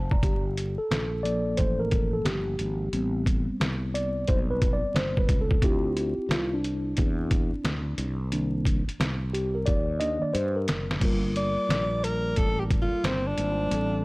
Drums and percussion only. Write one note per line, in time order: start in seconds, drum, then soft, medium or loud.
0.11 kick medium
0.23 kick loud
0.23 closed hi-hat medium
0.57 closed hi-hat medium
0.91 snare loud
0.91 closed hi-hat medium
1.25 closed hi-hat medium
1.57 kick medium
1.57 closed hi-hat medium
1.91 kick medium
1.91 closed hi-hat medium
2.26 snare loud
2.26 closed hi-hat medium
2.59 closed hi-hat medium
2.93 closed hi-hat medium
3.26 kick medium
3.26 closed hi-hat medium
3.61 snare loud
3.61 closed hi-hat medium
3.95 closed hi-hat medium
4.28 kick medium
4.28 closed hi-hat medium
4.62 kick loud
4.62 closed hi-hat medium
4.96 snare loud
4.96 closed hi-hat medium
5.17 kick medium
5.29 kick loud
5.29 closed hi-hat medium
5.51 kick loud
5.62 kick loud
5.62 closed hi-hat medium
5.97 closed hi-hat medium
6.31 snare loud
6.31 closed hi-hat medium
6.64 closed hi-hat medium
6.97 kick medium
6.97 closed hi-hat medium
7.31 kick loud
7.31 closed hi-hat medium
7.65 snare loud
7.65 closed hi-hat medium
7.98 closed hi-hat medium
8.32 closed hi-hat medium
8.65 kick medium
8.65 closed hi-hat medium
8.89 closed hi-hat medium
9.01 snare loud
9.01 closed hi-hat medium
9.35 closed hi-hat medium
9.66 kick medium
9.66 closed hi-hat medium
10.00 closed hi-hat medium
10.35 closed hi-hat medium
10.68 snare loud
10.68 closed hi-hat medium
10.91 snare medium
11.01 kick loud
11.01 closed hi-hat medium
11.01 crash medium
11.36 closed hi-hat medium
11.70 snare loud
11.70 closed hi-hat medium
12.04 closed hi-hat medium
12.36 kick medium
12.36 closed hi-hat medium
12.71 kick medium
12.71 closed hi-hat medium
13.04 snare loud
13.04 closed hi-hat medium
13.38 closed hi-hat medium
13.71 closed hi-hat medium